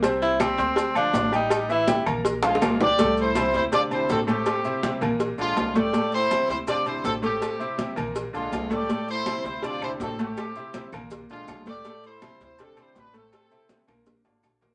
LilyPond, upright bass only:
\new Staff \with { instrumentName = "Upright bass" } { \clef bass \time 4/4 \key c \major \tempo 4 = 162 c,4. d,4. a,,4~ | a,,4. bes,,4. c,4 | c,4. d,4. a,,4 | r4. bes,,4 bes,,8 c,4 |
r4. d,4. a,,4 | r4. bes,,4 bes,,8 c,4 | r4. d,4. a,,4 | r4. bes,,4 bes,,8 c,4 |
r4. d,4. a,,4 | r4. bes,,4 aes,,8 bes,,4 | }